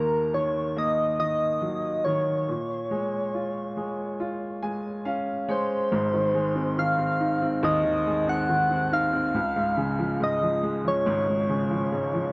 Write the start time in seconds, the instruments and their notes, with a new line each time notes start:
Already playing: upright piano D#2 D#3 A#3, soft synth lead A#4
0.34 upright piano D#3, soft synth lead C#5
0.77 upright piano A#3, soft synth lead D#5
1.19 upright piano D#3, soft synth lead D#5
1.61 upright piano F#3
2.05 upright piano D#3, soft synth lead C#5
2.48 upright piano A#2
2.91 upright piano G#3
3.34 upright piano F4
3.77 upright piano G#3
4.20 upright piano F4
4.63 upright piano G#3 G#5
5.05 upright piano C#4 F5
5.48 upright piano G#3 C#5, soft synth lead C5
5.92 upright piano G#1 G#2
6.13 upright piano D#3
6.34 upright piano G#3
6.55 upright piano C4
6.77 upright piano D#3, soft synth lead F5
6.98 upright piano C4
7.20 upright piano D#4
7.42 upright piano C4
7.63 upright piano D#2 D#3, soft synth lead D#5
7.84 upright piano D#3
8.06 upright piano G#3
8.27 upright piano C4, soft synth lead F#5
8.49 upright piano D#3
8.71 upright piano C4
8.92 upright piano D#4, soft synth lead F5
9.13 upright piano C4
9.34 upright piano C#2
9.56 upright piano G#2
9.77 upright piano C#3
9.99 upright piano F3
10.20 upright piano G#2, soft synth lead D#5
10.42 upright piano F3
10.63 upright piano G#3
10.85 upright piano F3, soft synth lead C#5
11.06 upright piano G#1 G#2
11.28 upright piano G#2
11.49 upright piano C#3
11.71 upright piano F3
11.92 upright piano G#2
12.14 upright piano F3